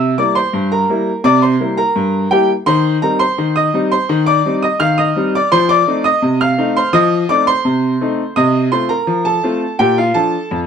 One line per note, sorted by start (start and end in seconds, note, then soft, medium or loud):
0.00 0.13 C3 medium
0.00 0.16 E5 medium
0.00 0.16 E6 loud
0.18 0.38 G3 soft
0.18 0.38 A#3 soft
0.18 0.38 E4 medium
0.18 0.35 D5 medium
0.18 0.36 D6 loud
0.35 0.69 C5 medium
0.35 0.69 C6 loud
0.53 0.84 G2 medium
0.72 1.21 A#4 medium
0.72 1.14 A#5 medium
0.89 1.09 G3 medium
0.89 1.09 A#3 medium
0.89 1.10 E4 medium
1.24 1.55 C3 loud
1.24 1.41 D5 medium
1.24 1.42 D6 loud
1.42 1.76 C5 medium
1.42 1.76 C6 medium
1.60 1.80 G3 soft
1.60 1.80 A#3 medium
1.60 1.80 E4 medium
1.77 2.28 A#4 medium
1.77 2.28 A#5 loud
1.96 2.26 G2 medium
2.31 2.51 G3 medium
2.31 2.51 A#3 medium
2.31 2.51 E4 medium
2.31 2.48 G4 medium
2.31 2.49 G5 loud
2.66 2.97 D#3 loud
2.66 3.00 C5 medium
2.66 2.95 C6 loud
3.02 3.22 G3 medium
3.02 3.22 C4 medium
3.02 3.22 D#4 medium
3.02 3.20 A#4 medium
3.02 3.20 A#5 loud
3.19 3.53 C5 medium
3.19 3.54 C6 loud
3.38 3.68 D#3 medium
3.56 3.89 D#5 medium
3.56 3.84 D#6 loud
3.74 3.93 G3 medium
3.74 3.94 C4 medium
3.74 3.94 D#4 medium
3.92 4.25 C5 medium
3.92 4.25 C6 loud
4.09 4.39 D#3 loud
4.26 4.60 D5 medium
4.26 4.55 D6 loud
4.45 4.65 G3 medium
4.45 4.65 C4 medium
4.45 4.65 D#4 medium
4.62 4.80 D#5 medium
4.62 4.80 D#6 loud
4.80 5.10 D#3 medium
4.80 4.97 F5 medium
4.80 4.98 F6 loud
4.98 5.32 D#5 medium
4.98 5.26 D#6 loud
5.16 5.36 G3 medium
5.16 5.36 C4 medium
5.16 5.36 D#4 medium
5.35 5.52 D5 medium
5.35 5.52 D6 loud
5.52 5.82 F3 loud
5.52 5.69 C5 medium
5.52 5.69 C6 loud
5.69 6.03 D5 medium
5.69 6.03 D6 loud
5.87 6.07 A3 medium
5.87 6.07 C4 medium
5.87 6.07 D#4 medium
6.04 6.38 D#5 medium
6.04 6.38 D#6 loud
6.22 6.53 C3 medium
6.41 6.74 F5 medium
6.41 6.69 F6 loud
6.58 6.78 A3 medium
6.58 6.78 C4 medium
6.58 6.78 D#4 medium
6.77 6.93 C5 medium
6.77 6.94 C6 loud
6.93 7.24 F3 loud
6.93 7.27 D#5 medium
6.93 7.27 D#6 loud
7.29 7.49 A3 medium
7.29 7.49 C4 medium
7.29 7.49 D#4 medium
7.29 7.47 D5 medium
7.29 7.47 D6 loud
7.47 8.33 C5 medium
7.47 8.32 C6 loud
7.65 7.95 C3 medium
8.01 8.21 A3 medium
8.01 8.21 C4 medium
8.01 8.21 D#4 medium
8.36 8.67 C3 loud
8.36 8.70 D#5 medium
8.36 8.65 D#6 loud
8.72 8.92 A3 medium
8.72 8.92 C4 medium
8.72 8.92 F4 medium
8.72 8.89 C5 medium
8.72 8.90 C6 loud
8.89 9.23 A#4 medium
8.89 9.23 A#5 loud
9.07 9.38 F3 medium
9.25 9.76 A4 medium
9.25 9.76 A5 medium
9.43 9.63 A3 medium
9.43 9.63 C4 medium
9.43 9.64 F4 medium
9.79 10.10 A#2 medium
9.79 9.96 G4 medium
9.79 9.97 G5 loud
9.98 10.14 F4 medium
9.98 10.15 F5 medium
10.14 10.34 F3 medium
10.14 10.35 D4 medium
10.14 10.35 F4 medium
10.14 10.65 A4 medium
10.14 10.58 A5 medium
10.51 10.67 F2 medium